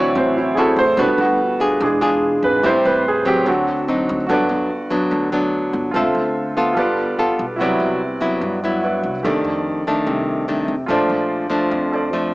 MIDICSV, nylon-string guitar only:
0, 0, Header, 1, 2, 480
1, 0, Start_track
1, 0, Key_signature, 1, "major"
1, 0, Tempo, 412939
1, 1141, Time_signature, 4, 2, 24, 8
1, 14345, End_track
2, 0, Start_track
2, 0, Title_t, "Nylon-string guitar"
2, 0, Program_c, 0, 24
2, 0, Note_on_c, 0, 50, 56
2, 0, Note_on_c, 0, 60, 54
2, 0, Note_on_c, 0, 64, 54
2, 0, Note_on_c, 0, 66, 66
2, 153, Note_off_c, 0, 50, 0
2, 188, Note_on_c, 0, 45, 55
2, 623, Note_off_c, 0, 60, 0
2, 625, Note_off_c, 0, 64, 0
2, 629, Note_off_c, 0, 66, 0
2, 661, Note_on_c, 0, 60, 46
2, 668, Note_on_c, 0, 64, 54
2, 675, Note_on_c, 0, 66, 56
2, 970, Note_off_c, 0, 60, 0
2, 975, Note_off_c, 0, 64, 0
2, 977, Note_off_c, 0, 66, 0
2, 1122, Note_off_c, 0, 45, 0
2, 1140, Note_on_c, 0, 55, 53
2, 1142, Note_on_c, 0, 59, 55
2, 1151, Note_on_c, 0, 62, 54
2, 1151, Note_on_c, 0, 66, 57
2, 1619, Note_off_c, 0, 59, 0
2, 1622, Note_off_c, 0, 62, 0
2, 1624, Note_off_c, 0, 66, 0
2, 1861, Note_on_c, 0, 62, 53
2, 1865, Note_on_c, 0, 65, 53
2, 1872, Note_on_c, 0, 68, 65
2, 2080, Note_off_c, 0, 55, 0
2, 2102, Note_on_c, 0, 52, 51
2, 2305, Note_off_c, 0, 62, 0
2, 2305, Note_off_c, 0, 65, 0
2, 2310, Note_off_c, 0, 68, 0
2, 2339, Note_on_c, 0, 62, 59
2, 2342, Note_on_c, 0, 65, 57
2, 2350, Note_on_c, 0, 68, 64
2, 3025, Note_off_c, 0, 62, 0
2, 3025, Note_off_c, 0, 65, 0
2, 3030, Note_off_c, 0, 68, 0
2, 3041, Note_off_c, 0, 52, 0
2, 3062, Note_on_c, 0, 55, 57
2, 3067, Note_on_c, 0, 45, 55
2, 3073, Note_on_c, 0, 60, 55
2, 3075, Note_on_c, 0, 64, 61
2, 3541, Note_off_c, 0, 55, 0
2, 3546, Note_off_c, 0, 64, 0
2, 3547, Note_off_c, 0, 60, 0
2, 3781, Note_on_c, 0, 54, 55
2, 3790, Note_on_c, 0, 60, 54
2, 4004, Note_off_c, 0, 45, 0
2, 4020, Note_on_c, 0, 50, 59
2, 4466, Note_off_c, 0, 54, 0
2, 4470, Note_off_c, 0, 60, 0
2, 4514, Note_on_c, 0, 54, 56
2, 4516, Note_on_c, 0, 60, 52
2, 4526, Note_on_c, 0, 63, 62
2, 4953, Note_off_c, 0, 54, 0
2, 4955, Note_off_c, 0, 60, 0
2, 4957, Note_off_c, 0, 63, 0
2, 4960, Note_off_c, 0, 50, 0
2, 4986, Note_on_c, 0, 43, 53
2, 4992, Note_on_c, 0, 54, 54
2, 4996, Note_on_c, 0, 59, 52
2, 5005, Note_on_c, 0, 62, 59
2, 5468, Note_off_c, 0, 54, 0
2, 5468, Note_off_c, 0, 59, 0
2, 5474, Note_off_c, 0, 62, 0
2, 5702, Note_on_c, 0, 54, 53
2, 5708, Note_on_c, 0, 59, 60
2, 5717, Note_on_c, 0, 62, 64
2, 5923, Note_off_c, 0, 43, 0
2, 5939, Note_on_c, 0, 50, 56
2, 6147, Note_off_c, 0, 54, 0
2, 6149, Note_off_c, 0, 59, 0
2, 6154, Note_off_c, 0, 62, 0
2, 6187, Note_on_c, 0, 54, 51
2, 6195, Note_on_c, 0, 59, 52
2, 6203, Note_on_c, 0, 62, 57
2, 6870, Note_off_c, 0, 54, 0
2, 6872, Note_off_c, 0, 59, 0
2, 6877, Note_off_c, 0, 62, 0
2, 6880, Note_off_c, 0, 50, 0
2, 6915, Note_on_c, 0, 50, 51
2, 6921, Note_on_c, 0, 60, 52
2, 6928, Note_on_c, 0, 65, 54
2, 6928, Note_on_c, 0, 69, 56
2, 7597, Note_off_c, 0, 60, 0
2, 7598, Note_off_c, 0, 65, 0
2, 7600, Note_off_c, 0, 69, 0
2, 7635, Note_on_c, 0, 59, 53
2, 7641, Note_on_c, 0, 65, 59
2, 7648, Note_on_c, 0, 69, 57
2, 7848, Note_off_c, 0, 50, 0
2, 7869, Note_on_c, 0, 55, 52
2, 8313, Note_off_c, 0, 59, 0
2, 8315, Note_off_c, 0, 65, 0
2, 8319, Note_off_c, 0, 69, 0
2, 8354, Note_on_c, 0, 59, 49
2, 8359, Note_on_c, 0, 65, 52
2, 8362, Note_on_c, 0, 69, 55
2, 8661, Note_off_c, 0, 59, 0
2, 8661, Note_off_c, 0, 65, 0
2, 8664, Note_off_c, 0, 69, 0
2, 8804, Note_off_c, 0, 55, 0
2, 8836, Note_on_c, 0, 48, 51
2, 8844, Note_on_c, 0, 54, 55
2, 8847, Note_on_c, 0, 59, 56
2, 8852, Note_on_c, 0, 64, 60
2, 9312, Note_off_c, 0, 54, 0
2, 9312, Note_off_c, 0, 59, 0
2, 9316, Note_off_c, 0, 64, 0
2, 9540, Note_on_c, 0, 54, 56
2, 9546, Note_on_c, 0, 59, 58
2, 9552, Note_on_c, 0, 64, 61
2, 9766, Note_off_c, 0, 48, 0
2, 9794, Note_on_c, 0, 43, 50
2, 9984, Note_off_c, 0, 54, 0
2, 9988, Note_off_c, 0, 59, 0
2, 9989, Note_off_c, 0, 64, 0
2, 10040, Note_on_c, 0, 54, 53
2, 10049, Note_on_c, 0, 59, 50
2, 10052, Note_on_c, 0, 64, 59
2, 10715, Note_off_c, 0, 54, 0
2, 10716, Note_off_c, 0, 64, 0
2, 10717, Note_off_c, 0, 59, 0
2, 10724, Note_off_c, 0, 43, 0
2, 10746, Note_on_c, 0, 41, 52
2, 10749, Note_on_c, 0, 51, 49
2, 10754, Note_on_c, 0, 57, 54
2, 10759, Note_on_c, 0, 62, 54
2, 11426, Note_off_c, 0, 51, 0
2, 11430, Note_off_c, 0, 57, 0
2, 11431, Note_off_c, 0, 62, 0
2, 11476, Note_on_c, 0, 51, 61
2, 11480, Note_on_c, 0, 57, 60
2, 11485, Note_on_c, 0, 62, 60
2, 11679, Note_off_c, 0, 41, 0
2, 11702, Note_on_c, 0, 48, 56
2, 12150, Note_off_c, 0, 51, 0
2, 12150, Note_off_c, 0, 57, 0
2, 12153, Note_off_c, 0, 62, 0
2, 12184, Note_on_c, 0, 51, 50
2, 12189, Note_on_c, 0, 57, 54
2, 12193, Note_on_c, 0, 62, 51
2, 12491, Note_off_c, 0, 51, 0
2, 12492, Note_off_c, 0, 57, 0
2, 12495, Note_off_c, 0, 62, 0
2, 12636, Note_off_c, 0, 48, 0
2, 12658, Note_on_c, 0, 46, 53
2, 12662, Note_on_c, 0, 53, 50
2, 12668, Note_on_c, 0, 57, 57
2, 12676, Note_on_c, 0, 62, 53
2, 13339, Note_off_c, 0, 53, 0
2, 13344, Note_off_c, 0, 57, 0
2, 13348, Note_off_c, 0, 62, 0
2, 13364, Note_on_c, 0, 53, 54
2, 13370, Note_on_c, 0, 57, 52
2, 13377, Note_on_c, 0, 62, 59
2, 13593, Note_off_c, 0, 46, 0
2, 13613, Note_on_c, 0, 41, 57
2, 14051, Note_off_c, 0, 53, 0
2, 14054, Note_off_c, 0, 57, 0
2, 14058, Note_off_c, 0, 62, 0
2, 14101, Note_on_c, 0, 53, 52
2, 14104, Note_on_c, 0, 57, 49
2, 14107, Note_on_c, 0, 62, 56
2, 14345, Note_off_c, 0, 41, 0
2, 14345, Note_off_c, 0, 53, 0
2, 14345, Note_off_c, 0, 57, 0
2, 14345, Note_off_c, 0, 62, 0
2, 14345, End_track
0, 0, End_of_file